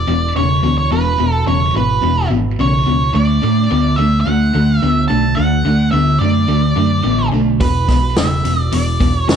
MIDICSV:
0, 0, Header, 1, 5, 480
1, 0, Start_track
1, 0, Tempo, 557621
1, 790, Time_signature, 4, 2, 24, 8
1, 8057, End_track
2, 0, Start_track
2, 0, Title_t, "Lead electric guitar"
2, 0, Program_c, 0, 29
2, 0, Note_on_c, 0, 74, 84
2, 276, Note_off_c, 0, 74, 0
2, 313, Note_on_c, 0, 73, 72
2, 660, Note_off_c, 0, 73, 0
2, 670, Note_on_c, 0, 73, 66
2, 788, Note_off_c, 0, 73, 0
2, 792, Note_on_c, 0, 71, 78
2, 1237, Note_off_c, 0, 71, 0
2, 1271, Note_on_c, 0, 73, 73
2, 1516, Note_off_c, 0, 73, 0
2, 1519, Note_on_c, 0, 71, 71
2, 1960, Note_off_c, 0, 71, 0
2, 2244, Note_on_c, 0, 73, 69
2, 2707, Note_off_c, 0, 73, 0
2, 2711, Note_on_c, 0, 74, 81
2, 3410, Note_on_c, 0, 76, 82
2, 3449, Note_off_c, 0, 74, 0
2, 3618, Note_off_c, 0, 76, 0
2, 3621, Note_on_c, 0, 78, 90
2, 4129, Note_off_c, 0, 78, 0
2, 4129, Note_on_c, 0, 76, 90
2, 4329, Note_off_c, 0, 76, 0
2, 4373, Note_on_c, 0, 81, 85
2, 4602, Note_off_c, 0, 81, 0
2, 4605, Note_on_c, 0, 78, 86
2, 5061, Note_off_c, 0, 78, 0
2, 5090, Note_on_c, 0, 76, 74
2, 5321, Note_off_c, 0, 76, 0
2, 5330, Note_on_c, 0, 74, 78
2, 6266, Note_off_c, 0, 74, 0
2, 6547, Note_on_c, 0, 71, 76
2, 7029, Note_on_c, 0, 76, 85
2, 7044, Note_off_c, 0, 71, 0
2, 7416, Note_off_c, 0, 76, 0
2, 7416, Note_on_c, 0, 74, 85
2, 7523, Note_off_c, 0, 74, 0
2, 7523, Note_on_c, 0, 74, 84
2, 7876, Note_off_c, 0, 74, 0
2, 7876, Note_on_c, 0, 73, 84
2, 7999, Note_off_c, 0, 73, 0
2, 8002, Note_on_c, 0, 73, 77
2, 8057, Note_off_c, 0, 73, 0
2, 8057, End_track
3, 0, Start_track
3, 0, Title_t, "Overdriven electric guitar"
3, 0, Program_c, 1, 29
3, 65, Note_on_c, 1, 40, 59
3, 71, Note_on_c, 1, 47, 70
3, 284, Note_off_c, 1, 40, 0
3, 287, Note_off_c, 1, 47, 0
3, 314, Note_on_c, 1, 40, 70
3, 318, Note_on_c, 1, 49, 87
3, 528, Note_off_c, 1, 40, 0
3, 530, Note_off_c, 1, 49, 0
3, 545, Note_on_c, 1, 40, 66
3, 549, Note_on_c, 1, 47, 72
3, 764, Note_off_c, 1, 40, 0
3, 766, Note_off_c, 1, 47, 0
3, 788, Note_on_c, 1, 47, 78
3, 789, Note_on_c, 1, 40, 69
3, 1005, Note_off_c, 1, 47, 0
3, 1006, Note_off_c, 1, 40, 0
3, 1032, Note_on_c, 1, 40, 64
3, 1036, Note_on_c, 1, 47, 74
3, 1247, Note_off_c, 1, 40, 0
3, 1249, Note_off_c, 1, 47, 0
3, 1268, Note_on_c, 1, 40, 74
3, 1273, Note_on_c, 1, 49, 81
3, 1484, Note_off_c, 1, 40, 0
3, 1487, Note_off_c, 1, 49, 0
3, 1520, Note_on_c, 1, 40, 71
3, 1521, Note_on_c, 1, 47, 76
3, 1730, Note_off_c, 1, 40, 0
3, 1731, Note_off_c, 1, 47, 0
3, 1747, Note_on_c, 1, 40, 65
3, 1753, Note_on_c, 1, 47, 84
3, 1963, Note_off_c, 1, 40, 0
3, 1966, Note_off_c, 1, 47, 0
3, 1986, Note_on_c, 1, 40, 66
3, 1987, Note_on_c, 1, 47, 69
3, 2203, Note_off_c, 1, 40, 0
3, 2203, Note_off_c, 1, 47, 0
3, 2231, Note_on_c, 1, 40, 71
3, 2239, Note_on_c, 1, 49, 83
3, 2445, Note_off_c, 1, 40, 0
3, 2449, Note_off_c, 1, 49, 0
3, 2470, Note_on_c, 1, 40, 63
3, 2473, Note_on_c, 1, 47, 77
3, 2684, Note_off_c, 1, 40, 0
3, 2686, Note_off_c, 1, 47, 0
3, 2713, Note_on_c, 1, 50, 70
3, 2720, Note_on_c, 1, 57, 79
3, 2925, Note_off_c, 1, 50, 0
3, 2929, Note_off_c, 1, 57, 0
3, 2954, Note_on_c, 1, 50, 68
3, 2957, Note_on_c, 1, 57, 78
3, 3166, Note_off_c, 1, 50, 0
3, 3167, Note_off_c, 1, 57, 0
3, 3190, Note_on_c, 1, 50, 74
3, 3193, Note_on_c, 1, 59, 86
3, 3403, Note_off_c, 1, 50, 0
3, 3405, Note_off_c, 1, 59, 0
3, 3433, Note_on_c, 1, 50, 59
3, 3435, Note_on_c, 1, 57, 71
3, 3645, Note_off_c, 1, 50, 0
3, 3646, Note_off_c, 1, 57, 0
3, 3674, Note_on_c, 1, 50, 77
3, 3678, Note_on_c, 1, 57, 76
3, 3885, Note_off_c, 1, 50, 0
3, 3887, Note_off_c, 1, 57, 0
3, 3916, Note_on_c, 1, 50, 62
3, 3920, Note_on_c, 1, 57, 64
3, 4126, Note_off_c, 1, 50, 0
3, 4129, Note_off_c, 1, 57, 0
3, 4154, Note_on_c, 1, 50, 76
3, 4159, Note_on_c, 1, 59, 80
3, 4365, Note_off_c, 1, 50, 0
3, 4368, Note_off_c, 1, 59, 0
3, 4383, Note_on_c, 1, 50, 57
3, 4390, Note_on_c, 1, 57, 68
3, 4600, Note_off_c, 1, 50, 0
3, 4604, Note_off_c, 1, 57, 0
3, 4621, Note_on_c, 1, 50, 62
3, 4624, Note_on_c, 1, 57, 74
3, 4839, Note_off_c, 1, 50, 0
3, 4841, Note_off_c, 1, 57, 0
3, 4863, Note_on_c, 1, 50, 67
3, 4871, Note_on_c, 1, 57, 74
3, 5080, Note_off_c, 1, 50, 0
3, 5084, Note_off_c, 1, 57, 0
3, 5104, Note_on_c, 1, 50, 77
3, 5110, Note_on_c, 1, 59, 80
3, 5321, Note_off_c, 1, 50, 0
3, 5324, Note_off_c, 1, 59, 0
3, 5346, Note_on_c, 1, 50, 64
3, 5349, Note_on_c, 1, 57, 70
3, 5562, Note_off_c, 1, 50, 0
3, 5564, Note_off_c, 1, 57, 0
3, 5580, Note_on_c, 1, 50, 67
3, 5582, Note_on_c, 1, 57, 83
3, 5800, Note_off_c, 1, 50, 0
3, 5800, Note_off_c, 1, 57, 0
3, 5820, Note_on_c, 1, 50, 66
3, 5826, Note_on_c, 1, 57, 68
3, 6040, Note_off_c, 1, 50, 0
3, 6043, Note_off_c, 1, 57, 0
3, 6055, Note_on_c, 1, 50, 75
3, 6060, Note_on_c, 1, 59, 83
3, 6278, Note_off_c, 1, 50, 0
3, 6280, Note_off_c, 1, 59, 0
3, 6298, Note_on_c, 1, 50, 58
3, 6306, Note_on_c, 1, 57, 64
3, 6520, Note_off_c, 1, 50, 0
3, 6524, Note_off_c, 1, 57, 0
3, 6549, Note_on_c, 1, 40, 69
3, 6551, Note_on_c, 1, 47, 69
3, 6765, Note_off_c, 1, 40, 0
3, 6767, Note_off_c, 1, 47, 0
3, 6798, Note_on_c, 1, 40, 64
3, 6802, Note_on_c, 1, 47, 68
3, 7011, Note_off_c, 1, 40, 0
3, 7013, Note_off_c, 1, 47, 0
3, 7032, Note_on_c, 1, 40, 73
3, 7033, Note_on_c, 1, 49, 86
3, 7248, Note_off_c, 1, 40, 0
3, 7249, Note_off_c, 1, 49, 0
3, 7269, Note_on_c, 1, 40, 64
3, 7274, Note_on_c, 1, 47, 74
3, 7487, Note_off_c, 1, 40, 0
3, 7490, Note_off_c, 1, 47, 0
3, 7506, Note_on_c, 1, 40, 70
3, 7512, Note_on_c, 1, 47, 82
3, 7726, Note_off_c, 1, 40, 0
3, 7729, Note_off_c, 1, 47, 0
3, 7746, Note_on_c, 1, 40, 61
3, 7750, Note_on_c, 1, 47, 62
3, 7967, Note_off_c, 1, 40, 0
3, 7969, Note_off_c, 1, 47, 0
3, 7986, Note_on_c, 1, 40, 76
3, 7990, Note_on_c, 1, 49, 86
3, 8057, Note_off_c, 1, 40, 0
3, 8057, Note_off_c, 1, 49, 0
3, 8057, End_track
4, 0, Start_track
4, 0, Title_t, "Picked electric bass"
4, 0, Program_c, 2, 34
4, 67, Note_on_c, 2, 28, 70
4, 276, Note_off_c, 2, 28, 0
4, 308, Note_on_c, 2, 28, 73
4, 517, Note_off_c, 2, 28, 0
4, 548, Note_on_c, 2, 38, 78
4, 757, Note_off_c, 2, 38, 0
4, 784, Note_on_c, 2, 28, 78
4, 994, Note_off_c, 2, 28, 0
4, 1026, Note_on_c, 2, 28, 69
4, 1235, Note_off_c, 2, 28, 0
4, 1272, Note_on_c, 2, 28, 79
4, 1478, Note_off_c, 2, 28, 0
4, 1509, Note_on_c, 2, 32, 71
4, 1716, Note_off_c, 2, 32, 0
4, 1746, Note_on_c, 2, 28, 78
4, 1954, Note_off_c, 2, 28, 0
4, 1986, Note_on_c, 2, 32, 78
4, 2194, Note_off_c, 2, 32, 0
4, 2231, Note_on_c, 2, 35, 74
4, 2437, Note_off_c, 2, 35, 0
4, 2473, Note_on_c, 2, 37, 79
4, 2678, Note_off_c, 2, 37, 0
4, 2705, Note_on_c, 2, 38, 81
4, 2913, Note_off_c, 2, 38, 0
4, 2957, Note_on_c, 2, 45, 74
4, 3160, Note_off_c, 2, 45, 0
4, 3196, Note_on_c, 2, 38, 80
4, 3399, Note_off_c, 2, 38, 0
4, 3430, Note_on_c, 2, 38, 79
4, 3635, Note_off_c, 2, 38, 0
4, 3669, Note_on_c, 2, 38, 74
4, 3875, Note_off_c, 2, 38, 0
4, 3914, Note_on_c, 2, 38, 75
4, 4118, Note_off_c, 2, 38, 0
4, 4156, Note_on_c, 2, 38, 80
4, 4359, Note_off_c, 2, 38, 0
4, 4395, Note_on_c, 2, 35, 76
4, 4598, Note_off_c, 2, 35, 0
4, 4636, Note_on_c, 2, 38, 74
4, 4839, Note_off_c, 2, 38, 0
4, 4864, Note_on_c, 2, 38, 74
4, 5073, Note_off_c, 2, 38, 0
4, 5102, Note_on_c, 2, 38, 77
4, 5312, Note_off_c, 2, 38, 0
4, 5344, Note_on_c, 2, 42, 74
4, 5553, Note_off_c, 2, 42, 0
4, 5578, Note_on_c, 2, 38, 78
4, 5789, Note_off_c, 2, 38, 0
4, 5825, Note_on_c, 2, 42, 71
4, 6034, Note_off_c, 2, 42, 0
4, 6064, Note_on_c, 2, 33, 74
4, 6274, Note_off_c, 2, 33, 0
4, 6302, Note_on_c, 2, 35, 75
4, 6550, Note_on_c, 2, 28, 79
4, 6563, Note_off_c, 2, 35, 0
4, 6758, Note_off_c, 2, 28, 0
4, 6791, Note_on_c, 2, 35, 71
4, 6999, Note_off_c, 2, 35, 0
4, 7029, Note_on_c, 2, 28, 77
4, 7238, Note_off_c, 2, 28, 0
4, 7271, Note_on_c, 2, 28, 77
4, 7480, Note_off_c, 2, 28, 0
4, 7515, Note_on_c, 2, 28, 78
4, 7723, Note_off_c, 2, 28, 0
4, 7753, Note_on_c, 2, 28, 74
4, 7962, Note_off_c, 2, 28, 0
4, 7997, Note_on_c, 2, 28, 79
4, 8057, Note_off_c, 2, 28, 0
4, 8057, End_track
5, 0, Start_track
5, 0, Title_t, "Drums"
5, 6548, Note_on_c, 9, 36, 89
5, 6549, Note_on_c, 9, 46, 54
5, 6634, Note_off_c, 9, 36, 0
5, 6635, Note_off_c, 9, 46, 0
5, 6789, Note_on_c, 9, 36, 76
5, 6789, Note_on_c, 9, 46, 42
5, 6790, Note_on_c, 9, 38, 28
5, 6875, Note_off_c, 9, 36, 0
5, 6875, Note_off_c, 9, 46, 0
5, 6876, Note_off_c, 9, 38, 0
5, 7028, Note_on_c, 9, 46, 55
5, 7030, Note_on_c, 9, 38, 100
5, 7114, Note_off_c, 9, 46, 0
5, 7116, Note_off_c, 9, 38, 0
5, 7273, Note_on_c, 9, 46, 43
5, 7359, Note_off_c, 9, 46, 0
5, 7509, Note_on_c, 9, 46, 61
5, 7595, Note_off_c, 9, 46, 0
5, 7752, Note_on_c, 9, 36, 70
5, 7755, Note_on_c, 9, 46, 39
5, 7838, Note_off_c, 9, 36, 0
5, 7841, Note_off_c, 9, 46, 0
5, 7996, Note_on_c, 9, 46, 58
5, 7998, Note_on_c, 9, 38, 99
5, 8057, Note_off_c, 9, 38, 0
5, 8057, Note_off_c, 9, 46, 0
5, 8057, End_track
0, 0, End_of_file